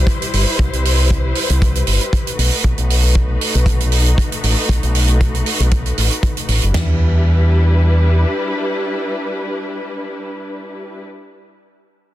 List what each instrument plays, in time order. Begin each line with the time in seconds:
Already playing: string section G3 E4 B4 C5
0.07 kick, closed hi-hat
0.22 closed hi-hat
0.33 fingered electric bass G1, open hi-hat
0.59 fingered electric bass C2, kick, closed hi-hat
0.73 fingered electric bass C2, closed hi-hat
0.85 open hi-hat
1.10 kick, closed hi-hat
1.35 open hi-hat
1.50 fingered electric bass C2, closed hi-hat
1.62 kick, closed hi-hat
1.75 closed hi-hat
1.87 fingered electric bass G1, open hi-hat
2.01 closed hi-hat
2.13 kick, closed hi-hat
2.27 closed hi-hat
2.38 fingered electric bass B1, string section A3 D#4 F#4, open hi-hat
2.64 fingered electric bass B1, kick, closed hi-hat
2.78 fingered electric bass B1, closed hi-hat
2.90 open hi-hat
3.15 kick, closed hi-hat
3.41 open hi-hat
3.55 fingered electric bass B1, closed hi-hat
3.66 kick, closed hi-hat
3.80 closed hi-hat
3.92 open hi-hat
4.06 closed hi-hat
4.18 kick, closed hi-hat
4.32 closed hi-hat
4.43 fingered electric bass A1, open hi-hat
4.69 fingered electric bass B1, kick, closed hi-hat
4.83 fingered electric bass B1, closed hi-hat
4.95 open hi-hat
5.08 closed hi-hat
5.21 kick, closed hi-hat
5.35 closed hi-hat
5.46 open hi-hat
5.60 fingered electric bass B1, closed hi-hat
5.71 kick, closed hi-hat
5.86 closed hi-hat
5.98 fingered electric bass A1, open hi-hat
6.11 closed hi-hat
6.23 kick, closed hi-hat
6.37 closed hi-hat
6.48 fingered electric bass A1, open hi-hat
6.62 fingered electric bass F#1, closed hi-hat
6.74 fingered electric bass E2, string section G3 D4 E4 B4, snare, floor tom, ride bell